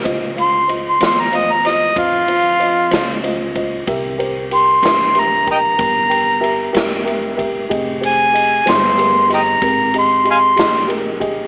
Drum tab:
RD |xxxxxxxxxxxx|xxxxxxxxxxxx|xxxxxxxxxxxx|
SD |---o-o---o--|---o-----o--|---o-o---o--|
BD |o-----o----o|o----oo----o|o-----o----o|